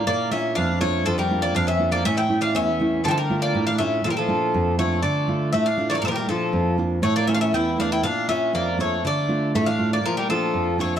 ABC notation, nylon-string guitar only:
X:1
M:2/4
L:1/8
Q:1/4=120
K:none
V:1 name="Nylon-string guitar"
_B,, [_B,DF] F,, [B,DF] | F,, [_B,DF] F,, [B,DF] | A,, [A,^CE] E,, [A,CE] | D, [A,DF] A,, [A,DF] |
_B,, [_B,DF] F,, [B,DF] | D, [A,DF] A,, [A,DF] | _B,, [_B,DF] F,, [B,DF] | A,, [A,^CE] E,, [A,CE] |
_B,, [_B,DF] F,, [B,DF] | D, [A,DF] A,, [A,DF] | _B,, [_B,DF] F,, [B,DF] |]